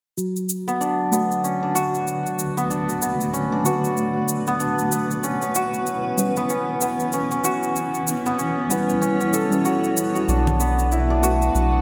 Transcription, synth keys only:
1.11 1.21 A3 medium
1.11 1.22 D4 medium
1.11 1.22 F#4 medium
1.11 1.22 B4 medium
3.63 5.21 D3 medium
3.63 5.21 A3 medium
3.63 5.22 F#4 medium
3.63 5.22 B4 medium
6.17 6.27 G3 medium
6.17 6.27 C#4 medium
6.17 6.27 E4 medium
6.17 6.28 B4 medium
8.68 9.48 G3 medium
8.68 9.48 C#4 medium
8.68 9.49 E4 medium
8.68 9.50 B4 medium
9.50 10.26 G3 medium
9.50 10.27 C#4 medium
9.50 10.27 E4 medium
9.50 10.28 B4 medium
11.22 11.32 A3 medium
11.22 11.32 D4 medium
11.22 11.33 F#4 medium
11.22 11.33 B4 medium

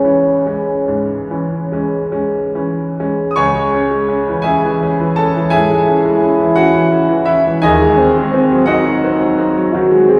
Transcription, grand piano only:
0.00 0.84 C#2 soft
0.00 0.04 E3 soft
0.00 0.41 E3 soft
0.00 0.46 G#3 soft
0.00 0.05 C#4 soft
0.05 0.42 C#4 soft
0.46 0.84 G#3 soft
0.46 0.84 C#4 soft
0.88 1.55 G#2 soft
1.30 1.67 E3 soft
1.30 1.68 C#4 soft
1.72 2.09 G#3 soft
1.72 2.10 C#4 soft
2.12 2.51 G#3 soft
2.12 2.51 C#4 soft
2.55 2.95 E3 soft
2.55 2.95 C#4 soft
3.00 3.35 G#3 soft
3.00 3.35 C#4 soft
3.31 3.38 D#6 medium
3.36 5.48 C#2 medium
3.36 4.42 C#5 medium
3.36 4.41 G#5 medium
3.36 4.45 C#6 loud
3.55 3.84 G#3 soft
3.74 4.03 C#4 soft
3.91 4.20 G#3 soft
4.09 4.39 C#4 soft
4.28 4.58 E3 soft
4.42 4.75 C#4 soft
4.42 5.13 G#4 medium
4.42 5.13 E5 medium
4.42 5.16 G#5 medium
4.64 4.93 E3 soft
4.83 5.11 C#4 soft
5.00 5.28 E3 soft
5.16 5.46 C#4 soft
5.16 5.50 A4 medium
5.16 5.52 A5 medium
5.36 5.64 E3 soft
5.50 5.81 G#2 soft
5.50 6.53 G#4 medium
5.50 6.52 E5 medium
5.50 6.56 G#5 medium
5.70 5.98 G#3 soft
5.88 6.16 C#4 soft
6.05 6.33 G#3 soft
6.22 6.50 C#4 soft
6.40 6.68 E3 soft
6.56 6.86 C#4 soft
6.56 7.23 F#4 medium
6.56 7.26 F#5 medium
6.75 7.03 E3 soft
6.92 7.20 C#4 soft
7.09 7.37 E3 soft
7.25 7.56 C#4 soft
7.25 7.60 E4 medium
7.25 7.61 E5 medium
7.46 7.63 E3 soft
7.62 9.70 D#1 medium
7.62 9.70 D#2 medium
7.62 8.63 G#4 medium
7.62 8.63 D#5 medium
7.62 8.67 G#5 medium
7.82 8.09 G#3 soft
8.00 8.26 C4 soft
8.18 8.44 G#3 soft
8.33 8.61 C4 soft
8.51 8.78 F#3 soft
8.66 8.96 C4 soft
8.66 10.20 F#4 medium
8.66 10.20 D#5 medium
8.66 10.20 F#5 medium
8.85 9.14 F#3 soft
9.04 9.32 C4 soft
9.21 9.49 F#3 soft
9.38 9.66 C4 soft
9.57 9.84 F#3 soft
9.75 10.02 D#3 soft
9.91 10.19 G#3 soft
10.08 10.20 C4 soft

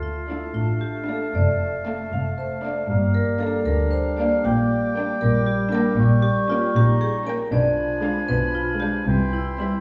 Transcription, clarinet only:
0.00 0.51 F4 medium
0.55 1.34 D4 medium
1.35 2.86 A3 medium
2.90 3.65 A#3 medium
3.65 4.44 D4 medium
4.46 5.21 A#3 medium
5.21 6.45 G3 medium
6.75 7.53 D#4 medium
7.52 9.07 D4 medium
9.08 9.80 E4 medium

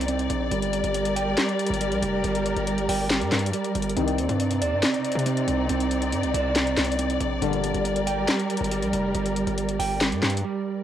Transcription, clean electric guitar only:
0.00 0.51 D5 loud
0.08 0.51 C4 medium
0.51 1.36 G3 medium
1.16 2.46 G5 medium
1.38 1.80 G3 loud
1.81 2.23 G3 medium
2.24 3.09 G3 loud
2.89 3.97 G5 medium
3.10 3.52 G3 medium
3.54 3.97 G3 medium
3.97 4.82 C4 medium
4.62 5.91 D5 loud
4.83 5.25 C4 medium
5.26 5.68 C4 medium
5.69 6.54 C4 medium
6.34 7.42 D5 loud
6.56 6.98 C4 medium
6.99 7.42 C4 medium
7.42 8.27 G3 medium
8.07 9.36 G5 medium
8.28 8.70 G3 loud
8.71 9.14 G3 medium
9.15 10.00 G3 loud
9.79 10.83 G5 medium
10.01 10.43 G3 loud
10.44 10.83 G3 medium

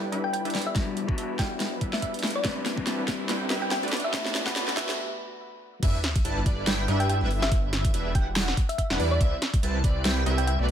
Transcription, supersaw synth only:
0.12 0.42 G3 medium
0.12 0.42 D4 medium
0.12 0.42 E4 medium
0.12 0.42 B4 medium
0.12 0.42 E5 medium
0.45 1.16 G3 medium
0.45 1.16 D4 medium
0.45 1.16 E4 medium
0.45 1.16 B4 medium
0.45 1.16 E5 medium
1.18 1.37 G3 medium
1.18 1.37 D4 medium
1.18 1.37 E4 medium
1.18 1.37 B4 medium
1.18 1.37 E5 medium
1.39 1.79 G3 medium
1.39 1.79 D4 medium
1.39 1.79 E4 medium
1.39 1.79 B4 medium
1.39 1.79 F#5 medium
1.81 2.00 G3 medium
1.81 2.00 D4 medium
1.81 2.00 E4 medium
1.81 2.00 B4 medium
1.81 2.00 E5 loud
2.02 2.42 G3 medium
2.02 2.42 D4 medium
2.02 2.42 E4 medium
2.02 2.42 B4 medium
2.02 2.42 E5 loud
2.44 2.59 G3 loud
2.44 2.59 C4 medium
2.44 2.59 E4 medium
2.44 2.59 B4 medium
2.44 2.59 E5 loud
2.87 3.02 G3 loud
2.87 3.02 C4 medium
2.87 3.02 E4 medium
2.87 3.02 B4 medium
2.87 3.02 A5 loud
3.08 3.27 G3 medium
3.08 3.27 C4 medium
3.08 3.27 E4 medium
3.08 3.27 B4 medium
3.08 3.27 D5 medium
3.29 3.48 G3 medium
3.29 3.48 C4 medium
3.29 3.48 E4 medium
3.29 3.48 B4 medium
3.29 3.48 G5 medium
3.50 3.80 G3 medium
3.50 3.80 C4 medium
3.50 3.80 E4 medium
3.50 3.80 B4 medium
3.50 3.80 E5 medium
3.83 4.54 A3 medium
3.83 4.54 D4 medium
3.83 4.54 F#4 medium
3.83 4.54 B4 medium
3.83 4.54 D5 loud
4.56 4.75 A3 medium
4.56 4.75 D4 medium
4.56 4.75 F#4 medium
4.56 4.75 B4 medium
4.56 4.75 D5 medium
4.77 4.98 A3 medium
4.77 4.98 D4 medium
4.77 4.98 F#4 medium
4.77 4.98 B4 medium
4.77 4.98 E5 medium
5.83 5.97 G3 loud
5.83 5.97 D4 medium
5.83 5.97 E4 medium
5.83 5.97 B4 medium
5.83 5.97 E5 loud
6.25 6.40 G3 loud
6.25 6.40 D4 medium
6.25 6.40 E4 medium
6.25 6.40 B4 medium
6.25 6.40 A5 loud
6.46 6.65 G3 medium
6.46 6.65 D4 medium
6.46 6.65 E4 medium
6.46 6.65 B4 medium
6.46 6.65 D5 medium
6.67 6.86 G3 medium
6.67 6.86 D4 medium
6.67 6.86 E4 medium
6.67 6.86 B4 medium
6.67 6.86 G5 medium
6.88 7.18 G3 medium
6.88 7.18 D4 medium
6.88 7.18 E4 medium
6.88 7.18 B4 medium
6.88 7.18 E5 medium
7.21 7.92 G3 medium
7.21 7.92 D4 medium
7.21 7.92 E4 medium
7.21 7.92 B4 medium
7.21 7.92 E5 loud
7.94 8.13 G3 medium
7.94 8.13 D4 medium
7.94 8.13 E4 medium
7.94 8.13 B4 medium
7.94 8.13 E5 medium
8.15 8.55 G3 medium
8.90 8.98 G3 loud
8.90 8.98 D4 medium
8.90 8.98 E4 medium
8.90 8.98 B4 medium
8.90 8.98 F#5 loud
8.99 9.18 G3 medium
8.99 9.18 D4 medium
8.99 9.18 E4 medium
8.99 9.18 B4 medium
8.99 9.18 D5 loud
9.21 9.35 G3 loud
9.21 9.35 C4 medium
9.21 9.35 E4 medium
9.21 9.35 B4 medium
9.21 9.35 E5 loud
9.63 9.78 G3 loud
9.63 9.78 C4 medium
9.63 9.78 E4 medium
9.63 9.78 B4 medium
9.63 9.78 A5 loud
9.84 10.03 G3 medium
9.84 10.03 C4 medium
9.84 10.03 E4 medium
9.84 10.03 B4 medium
9.84 10.03 D5 medium
10.05 10.24 G3 medium
10.05 10.24 C4 medium
10.05 10.24 E4 medium
10.05 10.24 B4 medium
10.05 10.24 G5 medium
10.26 10.56 G3 medium
10.26 10.56 C4 medium
10.26 10.56 E4 medium
10.26 10.56 B4 medium
10.26 10.56 E5 medium
10.59 10.71 A3 medium
10.59 10.71 D4 medium
10.59 10.71 F#4 medium
10.59 10.71 B4 medium
10.59 10.71 D5 loud

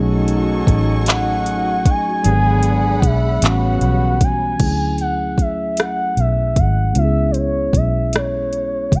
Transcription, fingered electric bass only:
0.00 0.64 B1 loud
0.68 2.20 A1 medium
2.26 2.99 G#1 loud
3.03 3.38 B1 medium
3.43 3.78 A1 medium
3.81 4.56 B1 medium
4.60 6.13 D2 medium
6.17 6.58 B1 medium
6.57 6.92 G#1 medium
6.96 7.70 C#2 medium
7.74 8.87 B1 medium
8.92 9.00 C#2 medium

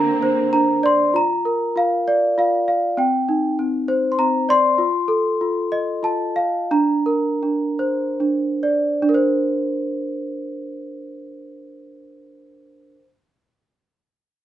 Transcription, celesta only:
0.00 0.52 D4 medium
0.00 0.84 A#4 medium
0.00 0.52 A#5 medium
0.22 1.15 C5 medium
0.53 1.15 D4 medium
0.53 0.81 A#5 medium
0.83 1.14 D5 medium
0.83 1.13 C6 medium
1.14 1.75 F4 medium
1.14 1.78 A#5 medium
1.45 2.67 A#4 medium
1.76 2.37 F4 medium
1.76 2.38 F5 medium
2.08 2.97 D5 medium
2.38 2.97 F4 medium
2.38 2.67 F5 medium
2.68 2.97 F5 medium
2.97 3.58 C4 medium
2.97 3.54 G5 medium
3.29 4.48 D#4 medium
3.59 4.18 C4 medium
3.88 4.78 C5 medium
4.12 4.18 C6 medium
4.19 4.78 C4 medium
4.19 4.46 A#5 medium
4.49 4.78 D5 medium
4.49 6.08 C6 medium
4.78 5.40 F4 medium
5.08 6.35 A4 medium
5.41 6.02 F4 medium
5.72 6.70 D#5 medium
6.03 6.69 F4 medium
6.03 6.66 A5 medium
6.36 6.69 F5 medium
6.71 7.41 D4 medium
6.71 8.17 A#5 medium
7.06 8.64 A#4 medium
7.43 8.19 D4 soft
7.79 9.09 C5 medium
8.20 9.01 D4 medium
8.63 9.09 D5 medium
9.02 12.93 D4 medium
9.09 13.00 A#4 medium
9.14 13.05 C5 medium

